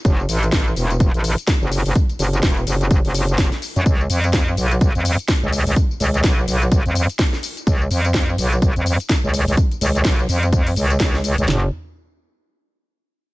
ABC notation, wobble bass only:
X:1
M:4/4
L:1/16
Q:"Swing 16ths" 1/4=126
K:C#phr
V:1 name="Wobble bass" clef=bass
F,,,2 A,,,4 E,,,3 A,,,2 z2 F,,,2 F,,, | z2 F,,,2 E,,,2 F,,,3 F,,,4 z2 F,, | C,,2 ^E,,4 B,,,3 E,,2 z2 C,,2 C,, | z2 C,,2 B,,,2 B,,,3 ^E,,2 z4 z |
C,,2 ^E,,4 B,,,3 E,,2 z2 C,,2 C,, | z2 C,,2 B,,,2 ^E,,4 C,,2 C,,3 C,, | F,,,2 z12 z2 |]